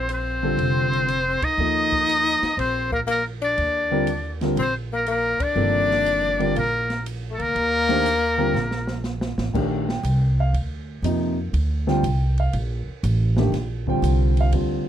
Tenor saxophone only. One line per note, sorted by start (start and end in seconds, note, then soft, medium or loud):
0.10 1.45 C4 medium
1.44 2.57 D#4 medium
2.58 2.89 C4 medium
2.92 2.99 A#3 medium
3.07 3.23 A#3 medium
3.41 4.34 D4 medium
4.59 4.73 C4 medium
4.93 5.07 A#3 medium
5.08 5.42 A#3 medium
5.41 6.56 D4 loud
6.56 7.03 A#3 medium
7.30 7.40 A3 medium
7.38 9.04 A#3 loud